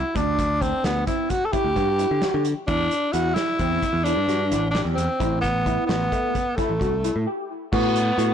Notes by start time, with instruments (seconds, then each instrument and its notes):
Already playing: tenor saxophone E4
0.15 picked electric bass D2, tine electric piano D4, tenor saxophone D4, kick, closed hi-hat
0.39 kick, closed hi-hat
0.61 tenor saxophone C4, tine electric piano D4, kick, closed hi-hat
0.84 picked electric bass D2, tenor saxophone B3, snare, closed hi-hat
1.06 tine electric piano C4, tenor saxophone E4, kick, closed hi-hat
1.30 tenor saxophone F#4, kick, closed hi-hat
1.45 tenor saxophone A4
1.52 tine electric piano E4, tenor saxophone G4, kick, closed hi-hat
1.64 picked electric bass D2
1.75 picked electric bass G2, tine electric piano F#4, kick, closed hi-hat
1.99 tine electric piano E4, closed hi-hat
2.11 picked electric bass D3
2.22 tine electric piano F#4, snare, closed hi-hat
2.34 picked electric bass D3
2.45 closed hi-hat
2.67 picked electric bass E2, tenor saxophone D4, tine electric piano E4, kick, closed hi-hat
2.91 closed hi-hat
3.12 picked electric bass E2, tine electric piano E4, tenor saxophone F#4, closed hi-hat
3.34 tenor saxophone E4, snare, closed hi-hat
3.59 picked electric bass E2, tine electric piano C4, kick, closed hi-hat
3.83 kick, closed hi-hat
3.93 picked electric bass E2
4.03 tenor saxophone D4, tine electric piano E4, closed hi-hat
4.16 picked electric bass G2
4.28 picked electric bass G2, tine electric piano F#4, snare, closed hi-hat
4.51 picked electric bass A1, tine electric piano E4, closed hi-hat
4.70 tenor saxophone D4, tine electric piano G4
4.75 snare, closed hi-hat
4.85 picked electric bass E2
4.94 picked electric bass E2, tenor saxophone C4, closed hi-hat
5.20 picked electric bass A1, tine electric piano E4, kick, closed hi-hat
5.41 tenor saxophone B3, kick, closed hi-hat
5.66 tine electric piano E4, kick, closed hi-hat
5.86 picked electric bass A1, tenor saxophone B3, snare, closed hi-hat
6.11 tine electric piano A3, kick, closed hi-hat
6.35 kick, closed hi-hat
6.56 tenor saxophone A3, tine electric piano E4, kick, snare, closed hi-hat
6.70 picked electric bass A1
6.80 picked electric bass C2, tine electric piano F#4, kick, closed hi-hat
7.04 tine electric piano E4, closed hi-hat
7.16 picked electric bass A2
7.26 tine electric piano G4
7.72 picked electric bass A2, tenor saxophone B3, tine electric piano F#4, kick, crash
7.96 closed hi-hat
8.18 picked electric bass A2, tine electric piano F#4, closed hi-hat